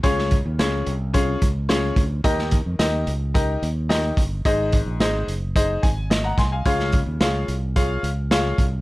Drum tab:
HH |x-x-x-x-x-x-x-x-|x-x-x-x-x-x-x-x-|x-x-x-x-x-x-x-x-|x-x-x-x-x-x-x-x-|
SD |-o--o-------o---|-o--o-------o---|----o-------o-o-|-o--o-------o---|
BD |o-o-----o-o---o-|o-o-----o-----o-|o-o-----o-o---o-|o-o-----o-----o-|